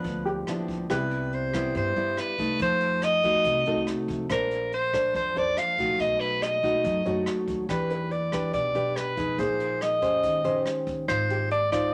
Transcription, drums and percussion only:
0.04 kick, closed hi-hat
0.26 closed hi-hat
0.47 cross-stick, closed hi-hat
0.68 kick, closed hi-hat
0.90 kick, cross-stick, closed hi-hat
1.11 closed hi-hat
1.32 closed hi-hat
1.54 kick, cross-stick, closed hi-hat
1.75 kick, closed hi-hat
1.96 closed hi-hat
2.17 cross-stick, closed hi-hat
2.38 kick, closed hi-hat
2.59 kick, closed hi-hat
2.80 closed hi-hat
3.02 cross-stick, closed hi-hat
3.23 kick, closed hi-hat
3.44 kick, closed hi-hat
3.66 closed hi-hat
3.87 cross-stick, closed hi-hat
4.08 kick, closed hi-hat
4.30 kick, cross-stick, closed hi-hat
4.51 closed hi-hat
4.72 closed hi-hat
4.93 kick, cross-stick, closed hi-hat
5.15 kick, closed hi-hat
5.36 closed hi-hat
5.57 cross-stick, closed hi-hat
5.78 kick, closed hi-hat
6.00 kick, closed hi-hat
6.21 closed hi-hat
6.42 cross-stick, closed hi-hat
6.63 kick, closed hi-hat
6.84 kick, closed hi-hat
7.06 closed hi-hat
7.26 cross-stick, closed hi-hat
7.48 kick, closed hi-hat
7.69 kick, cross-stick, closed hi-hat
7.90 closed hi-hat
8.11 closed hi-hat
8.32 kick, cross-stick, closed hi-hat
8.53 kick, closed hi-hat
8.75 closed hi-hat
8.96 cross-stick, closed hi-hat
9.17 kick, closed hi-hat
9.38 kick, closed hi-hat
9.60 closed hi-hat
9.81 cross-stick, closed hi-hat
10.02 kick, closed hi-hat
10.23 kick, closed hi-hat
10.44 closed hi-hat
10.66 cross-stick, closed hi-hat
10.87 kick, closed hi-hat
11.08 kick, cross-stick, closed hi-hat
11.30 closed hi-hat
11.51 closed hi-hat
11.72 kick, cross-stick, closed hi-hat

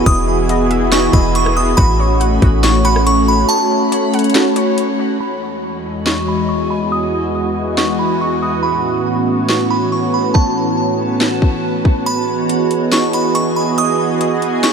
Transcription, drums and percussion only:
0.06 kick, closed hi-hat
0.49 closed hi-hat
0.71 closed hi-hat
0.92 snare, closed hi-hat
1.13 kick, closed hi-hat
1.35 closed hi-hat
1.46 cross-stick
1.78 kick, closed hi-hat
2.21 closed hi-hat
2.42 kick, closed hi-hat
2.64 snare, closed hi-hat
2.85 closed hi-hat
2.96 cross-stick
3.07 closed hi-hat
3.49 closed hi-hat
3.92 closed hi-hat
4.14 closed hi-hat
4.19 closed hi-hat
4.24 closed hi-hat
4.30 closed hi-hat
4.35 snare, closed hi-hat
4.56 closed hi-hat
4.78 closed hi-hat
6.06 snare
7.78 snare
9.49 snare
10.35 kick
11.21 snare
11.42 kick
11.85 kick
12.06 closed hi-hat
12.49 closed hi-hat
12.71 closed hi-hat
12.92 snare, closed hi-hat
13.13 closed hi-hat
13.35 closed hi-hat
13.78 closed hi-hat
14.21 closed hi-hat
14.42 closed hi-hat
14.64 snare, closed hi-hat

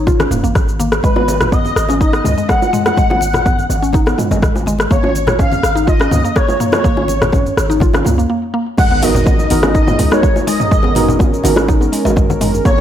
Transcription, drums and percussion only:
0.07 kick, high conga, low conga, cabasa
0.20 cross-stick, muted conga, high conga, cabasa
0.31 mid tom, cabasa
0.44 cabasa
0.55 kick, cross-stick, muted conga, high conga, low conga, cabasa
0.69 cabasa
0.80 high conga, cabasa
0.92 cross-stick, muted conga, cabasa
1.03 kick, low bongo, high conga, cabasa
1.16 high bongo
1.28 low bongo, muted conga, cabasa
1.41 cross-stick, high bongo, high conga, low conga, cabasa
1.52 kick, mid tom, cabasa
1.65 low bongo, muted conga, cabasa
1.76 cross-stick, cabasa
1.89 low bongo, cabasa
2.01 kick, cabasa
2.13 cross-stick, muted conga, cabasa
2.25 mid tom, low bongo, high conga, cabasa
2.38 cabasa
2.49 kick, cross-stick, low bongo, muted conga, cabasa
2.62 high bongo, cabasa
2.73 mid tom, cabasa
2.86 cross-stick, high bongo, low bongo, muted conga, cabasa
2.97 kick, high conga, cabasa
3.10 high bongo, low bongo
3.21 muted conga, cabasa
3.33 cross-stick, high bongo, high conga, low conga, cabasa
3.46 kick, mid tom, low bongo, cabasa
3.59 muted conga, cabasa
3.70 low bongo, cabasa
3.83 cabasa
3.93 kick, high conga, low conga, cabasa
4.06 cross-stick, low bongo, muted conga, high conga, cabasa
4.18 mid tom, high bongo, cabasa
4.31 low bongo, cabasa
4.42 kick, cross-stick, muted conga, high conga, low conga, cabasa
4.56 high bongo, cabasa
4.66 low bongo, high conga, cabasa
4.79 cross-stick, muted conga, cabasa
4.90 kick, low bongo, high conga, cabasa
5.04 high bongo
5.16 muted conga, cabasa
5.27 cross-stick, high bongo, low bongo, high conga, low conga, cabasa
5.39 kick, mid tom, cabasa
5.51 low bongo, muted conga, cabasa
5.63 cross-stick, cabasa
5.77 cabasa
5.88 kick, low bongo, cabasa
6.00 cross-stick, muted conga, cabasa
6.11 mid tom, low bongo, high conga, cabasa
6.25 cabasa
6.36 kick, cross-stick, muted conga, cabasa
6.48 high bongo, low bongo, cabasa
6.60 mid tom, cabasa
6.72 cross-stick, high bongo, low bongo, muted conga, cabasa
6.85 kick, high conga, cabasa
6.97 high bongo
7.08 low bongo, muted conga, cabasa
7.22 cross-stick, high bongo, high conga, low conga, cabasa
7.32 kick, mid tom, low bongo, cabasa
7.46 muted conga, cabasa
7.57 cross-stick, cabasa
7.70 low bongo, cabasa
7.80 kick, high conga, low conga, cabasa
7.93 cross-stick, low bongo, muted conga, high conga, cabasa
8.05 mid tom, high bongo, cabasa
8.19 cabasa
8.78 kick, crash, low bongo, cabasa
8.91 high conga
9.02 open hi-hat, low bongo, muted conga, cabasa
9.15 low conga, cabasa
9.26 kick, high bongo, cabasa
9.39 low bongo, muted conga, cabasa
9.50 open hi-hat, high conga, cabasa
9.63 cross-stick, high bongo, low bongo, cabasa
9.75 kick, muted conga, cabasa
9.87 mid tom, high bongo, cabasa
9.99 open hi-hat, low bongo, high conga, low conga, cabasa
10.11 cross-stick, muted conga, cabasa
10.23 kick, low bongo, cabasa
10.36 high bongo, cabasa
10.47 open hi-hat, muted conga, cabasa
10.60 mid tom, low bongo, cabasa
10.72 kick, cabasa
10.83 low bongo, high conga
10.95 mid tom, open hi-hat, muted conga, cabasa
11.08 low conga, cabasa
11.19 kick, high bongo, low bongo, cabasa
11.34 muted conga, cabasa
11.44 open hi-hat, low bongo, high conga, cabasa
11.56 cross-stick, high bongo, cabasa
11.68 kick, muted conga, high conga, low conga, cabasa
11.81 low bongo, cabasa
11.93 open hi-hat, cabasa
12.05 low bongo, muted conga, cabasa
12.16 kick, mid tom, low conga, cabasa
12.30 high conga, cabasa
12.41 mid tom, open hi-hat, low bongo, muted conga, cabasa
12.54 high conga, cabasa
12.65 kick, low bongo, cabasa

